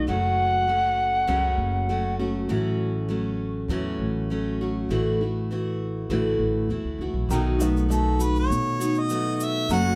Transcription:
0.07 F#1 F#2 C#3 F#3 A3 C#4 F#4 F#5
0.68 F#3 A3 C#4 F#4
1.27 C#2 F#2 C#3 F#3 A3 C#4 F#4
1.58 F#1
1.89 F#3 A3 C#4 F#4
2.19 F#3 A3 C#4 F#4
2.48 A1 A2 E3 F#3 A3 C#4 F#4
3.09 F#3 A3 C#4 F#4
3.68 E2 A2 E3 F#3 A3 C#4 F#4
3.99 A1
4.30 F#3 A3 C#4 F#4
4.61 F#3 A3 C#4 F#4
4.89 A1 A2 D3 E3 A3 E4 F#4
5.21 E3 A3 E4 F#4
5.51 E3 A3 E4 F#4
6.09 A1 A2 D3 E3 A3 E4 F#4
6.39 A1
6.69 E2 E3 A3 E4 F#4
6.84 D2
6.98 C#2 A3 E4 F#4
7.03 E3
7.13 B1
7.29 B1 B2 D#3 F#3 A3, shaker
7.33 D#4 F#4
7.59 A3 B3 D#4 F#4, shaker
7.76 shaker
7.89 F#3 A3 D#4 F#4 A4, shaker
8.19 A3 D#4 F#4 B4, shaker
8.36 C#5, shaker
8.50 B2, shaker
8.80 A3 D#4 F#4, shaker
8.95 shaker
9.00 D#5
9.09 F#3 A3 B3 D#4 F#4, shaker
9.35 D#5
9.40 E5, shaker
9.69 F#1 F#2 C#3 F#3 A3 C#4 F#4 F#5, shaker

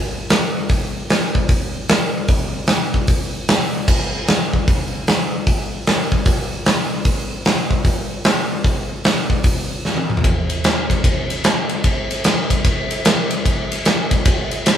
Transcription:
0.30 snare, open hi-hat
0.69 kick, open hi-hat
1.10 snare, open hi-hat
1.35 kick
1.49 kick, open hi-hat
1.89 snare, open hi-hat
2.28 kick, open hi-hat
2.67 snare, open hi-hat
2.94 kick
3.07 kick, open hi-hat
3.48 snare, open hi-hat
3.88 kick, crash
4.28 snare, open hi-hat
4.53 kick
4.68 kick, open hi-hat
5.07 snare, open hi-hat
5.47 kick, open hi-hat
5.87 snare, open hi-hat
6.12 kick
6.25 kick, open hi-hat
6.66 snare, open hi-hat
7.05 kick, open hi-hat
7.45 snare, open hi-hat
7.71 kick
7.85 kick, open hi-hat
8.24 snare, open hi-hat
8.64 kick, open hi-hat
9.04 snare, open hi-hat
9.30 kick
9.44 kick, open hi-hat
9.85 snare
9.97 high tom
10.10 mid tom
10.17 floor tom
10.24 kick, ride
10.50 ride
10.64 snare, ride
10.90 kick, ride
11.04 kick, ride
11.30 ride
11.44 snare, ride
11.69 ride
11.84 kick, ride
12.11 ride
12.24 snare, ride
12.50 kick, ride
12.65 kick, ride
12.91 ride
13.05 snare, ride
13.31 ride
13.46 kick, ride
13.72 ride
13.85 snare, ride
14.11 kick, ride
14.25 kick, ride
14.51 ride
14.66 snare, ride

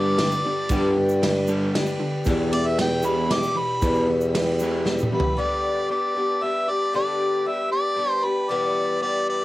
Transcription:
Already playing: G2 D3 G3 B3 D4 G4 B4 D5 B5
0.18 G2 D3 G3 B3 D4 G4, snare, ride
0.32 shaker
0.43 G2 D3 G3 B3 D4 G4
0.69 G2 D3 G3 B3 D4 G4, kick, ride, shaker
0.97 G2 D3
1.09 shaker
1.22 G2 D3 G3 B3 D4 G4, snare, ride
1.48 G2 D3 G3, shaker
1.73 G2 D3 G3 B3 D4 G4, snare, ride
1.86 shaker
2.00 G2 D3
2.25 E2 B2 E3 G3 B3 G4 E5, kick, ride, shaker
2.29 B4
2.53 E2 B2 D5, ride
2.67 E5
2.78 E2 B2 E3 G3 B3 G4 G5, snare, ride
3.03 E2 B2 E3 G3 B3 G4 B5, shaker
3.07 E3
3.30 E2 B2 E3 G3 B3 D6, snare, ride
3.34 G4
3.43 shaker
3.56 E2 B2 B5
3.82 E2 B2 E3 G3 B3 G4, kick, ride, shaker
3.95 shaker
4.10 E2 B2
4.21 shaker
4.34 E2 B2 E3 G3 B3 G4, snare, ride
4.59 E2 B2 E3, shaker
4.85 E2 B2 E3 G3 B3 G4, snare
4.99 shaker
5.03 mid tom
5.11 E2 B2 G3 B3 G4 B4
5.15 E3
5.20 floor tom
5.37 G2 D3 G3 B3 D4 G4 B4 D5 B5
5.89 G3 B3 D4 G4 D5
6.15 G3 B3 D4 G4
6.41 G3 B3 D4 G4 E5
6.68 G3 B3 D4 G4 D5
6.93 G2 D3 G3 B3 D4 G4 D5
7.45 G3 B3 D4 G4 E5
7.70 G3 B3 D4 G4 D5
7.96 G3 B3 D4 G4
8.10 C5
8.23 G3 B3 D4 G4 B4
8.49 E2 B2 E3 G3 B3 G4 D5 E5
9.00 E3 G3 B3 G4 D5
9.29 D5

